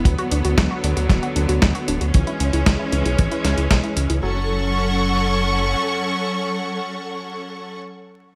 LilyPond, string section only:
\new Staff \with { instrumentName = "String section" } { \time 4/4 \key fis \minor \tempo 4 = 115 <d fis b>1 | <e gis cis'>1 | <fis cis' a' fis'' cis'''>1~ | <fis cis' a' fis'' cis'''>1 | }